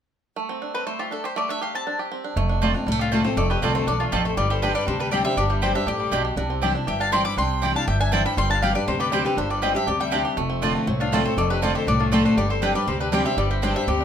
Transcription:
0.36 A3
0.49 C4
0.62 D4
0.74 C4 B4
0.87 A3 C5
0.99 F4 G4
1.11 D4 A4
1.24 G4 C5
1.36 A3 D5
1.49 D4 E5
1.61 G4 F5
1.75 C4 A5
1.87 D4
1.99 G4
2.12 C4
2.24 D4
2.36 F1 F2 A3
2.49 D4
2.62 D3 A3 C4 F4 D5 A5
2.74 C4 D4 F4
2.86 C2 A2 G3
2.92 A3
2.99 D4 F4 G4
3.12 D3 A3 C4 F4 A4 D5 A5
3.24 C4 F4 A4 C5
3.36 F1 F2 A3 A4 D5
3.50 G4 B4
3.62 C2 D3 A3 C4 D4 F4 A4 D5 A5
3.75 A3 A4 C5
3.87 B1 E2 D4 A4 D5
4.00 A3 D4 F4
4.12 A1 F2 C4 F4 G4 A4 D5 A5
4.25 A3 A4 C5
4.37 G1 G2 G3 G4 D5
4.50 G4 A4 C5
4.62 G3 C4 D4 G4 B4 D5 G5
4.75 G3 B4 D5
4.87 D2 C3 D4 G4 C5
5.00 G3 G4 B4
5.11 G3 C4 D4 G4 D5 G5
5.25 G3 D4 G4 C5 E5
5.37 G1 G2 D4 G4 D5
5.50 G3 E4 G4
5.62 G3 C4 D4 G4 C5 D5 G5
5.74 D4 G4 C5 E5
5.86 A1 A2 G4 D5
6.00 G3
6.11 B1 B2 C4 D4 G4 D5 G5
6.25 G4
6.36 C2 C3 D4
6.50 C4
6.62 E3 G3 C4 D4 E4 G4 D5 G5
6.75 D4 E4
6.87 G1 G2 G4 E5 G5
7.00 D4 F5 A5
7.12 E3 G3 C4 D4 E4 D5 G5 C6
7.25 G3 D4 E4 B5 D6
7.37 C2 C3 D4 G5 C6
7.62 E3 G3 C4 D4 E4 G4 D5 G5
7.75 D4 E4 F5 A5
7.87 G1 G2 G4 E5 G5
8.00 D4 E5 G#5
8.12 E3 G3 C4 D4 E4 D5 E5 G5 A5
8.25 G3 D4 E4 G5 B5
8.37 G1 G2 G3 G5 C6
8.50 D4 F5 A5
8.62 G3 C4 D4 G4 D5 F5 G5
8.75 D4 G4 B4 D5
8.87 D2 C3 G3 G4 C5
8.99 G4 B4 D5
9.11 G3 C4 D4 G4 C5 D5 G5
9.24 C4 D4 G4 B4
9.37 G1 G2 D4 G4 C5
9.50 G3 B4 D5
9.62 G3 C4 D4 G4 C5 D5 D#5 G5
9.75 D4 G4 C5 E5
9.87 D2 C3 G4 D5
10.00 G3 E5 G5
10.11 G3 C4 D4 G4 D5 G5
10.25 G4
10.37 F1 F2 A3
10.50 C4
10.62 D3 A3 C4 D4 F4 D5 A5
10.75 A3
10.87 C2 A2 C4
11.00 D4 F4
11.12 D3 A3 C4 F4 A4 D5 A5
11.25 C4 F4 A4 C5
11.37 F1 F2 A3 A4 D5
11.50 D4 G4 B4
11.62 D3 A3 C4 F4 A4 D5 A5
11.75 G4 A4 C5
11.87 C2 A2 D4 A4 D5
12.00 A3 D4 F4
12.12 D3 A3 C4 F4 G4 A4 D5 A5
12.25 D4 A4 C5
12.36 G1 G2 G3 G4 D5
12.49 C4 A4 C5
12.62 G3 C4 D4 G4 B4 D5 G5
12.74 G3 D4 G4 B4 D5
12.87 D2 C3 C4 G4 C5
13.00 D4 G4 B4
13.12 G3 C4 D4 G4 D5 G5
13.25 C4 D4 G4 C5 E5
13.37 G1 G2 G3 G4 D5
13.51 C4 E4 G4
13.62 G3 C4 D4 G4 C5 D5 G5
13.76 G3 D4 G4 C5 E5
13.87 D2 C3 C4 G4 D5
14.01 D4

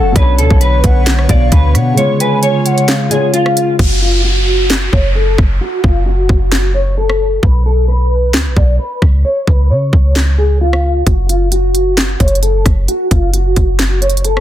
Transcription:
Already playing: F#3 C#4 F#4 A4 C#5 F#5
0.00 F#1
0.12 B1 B2 B3 C#5, kick
0.16 D3 B3 D4 B4 C#5, closed hi-hat
0.38 D2 A4, closed hi-hat
0.50 B1, kick
0.61 B4, closed hi-hat
0.84 B1 F#5, kick, closed hi-hat
1.06 snare, clap, closed hi-hat
1.19 cross-stick
1.27 B1 B2 B3 D4 C#5 D5 F5, kick, closed hi-hat
1.52 D2 B4, kick, closed hi-hat
1.75 B2 F#5, cross-stick, closed hi-hat
1.94 C#3 G#3 F4 C#5, closed hi-hat
1.99 F4 C#5
2.20 B4 G#5, closed hi-hat
2.43 C#5, closed hi-hat
2.66 F#5, closed hi-hat
2.78 closed hi-hat
2.88 F5, snare, clap, closed hi-hat
3.09 C#3 G#3 F4 G#4 C#5, closed hi-hat
3.34 F4, closed hi-hat
3.46 cross-stick
3.57 closed hi-hat
3.79 F#1 F#4, kick, crash, downlifter
4.02 F4
4.24 F#4
4.70 snare, clap
4.92 F#1 C#5, kick
5.15 A4
5.38 F#1, kick, cross-stick
5.61 F#4
5.84 F#1 F4, kick
6.06 F#4
6.29 F#1, kick
6.52 snare, clap
6.74 C#5
6.97 A4
7.10 cross-stick
7.43 B1 B4, kick
7.66 A4
7.88 B4
8.34 D2, snare, clap
8.46 B1
8.57 B1 D5, kick
8.79 B4
9.02 C#2, kick, cross-stick
9.25 C#5
9.47 C#2 B4, kick
9.70 C#3 C#5
9.93 C#2, kick
10.16 snare, clap
10.38 G#4
10.61 F4
10.73 cross-stick
11.06 F#1 F#4, kick, closed hi-hat
11.29 F4, closed hi-hat
11.52 F#4, closed hi-hat
11.75 closed hi-hat
11.97 snare, clap, closed hi-hat
12.20 F#1 C#5, kick, closed hi-hat
12.28 closed hi-hat
12.35 closed hi-hat
12.43 A4, closed hi-hat
12.66 F#1, kick, cross-stick, closed hi-hat
12.88 F#4, closed hi-hat
13.11 F#1 F4, kick, closed hi-hat
13.33 F#4, closed hi-hat
13.56 F#1, kick, closed hi-hat
13.79 snare, clap, closed hi-hat
14.01 C#5, closed hi-hat
14.10 closed hi-hat
14.17 closed hi-hat
14.25 A4, closed hi-hat
14.37 cross-stick

